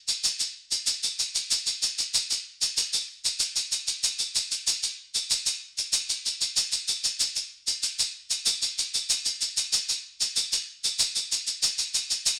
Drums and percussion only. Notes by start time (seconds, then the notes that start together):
0.08 shaker
0.24 shaker
0.40 shaker
0.71 shaker
0.87 shaker
1.03 shaker
1.19 shaker
1.35 shaker
1.51 shaker
1.67 shaker
1.82 shaker
1.98 shaker
2.14 shaker
2.30 shaker
2.62 shaker
2.77 shaker
2.93 shaker
3.25 shaker
3.40 shaker
3.56 shaker
3.72 shaker
3.88 shaker
4.04 shaker
4.19 shaker
4.35 shaker
4.51 shaker
4.67 shaker
4.83 shaker
5.15 shaker
5.31 shaker
5.46 shaker
5.78 shaker
5.93 shaker
6.09 shaker
6.26 shaker
6.41 shaker
6.57 shaker
6.72 shaker
6.88 shaker
7.04 shaker
7.20 shaker
7.36 shaker
7.67 shaker
7.83 shaker
7.99 shaker
8.30 shaker
8.46 shaker
8.62 shaker
8.79 shaker
8.94 shaker
9.10 shaker
9.25 shaker
9.41 shaker
9.57 shaker
9.73 shaker
9.89 shaker
10.21 shaker
10.36 shaker
10.53 shaker
10.84 shaker
10.99 shaker
11.16 shaker
11.32 shaker
11.47 shaker
11.63 shaker
11.78 shaker
11.94 shaker
12.10 shaker
12.26 shaker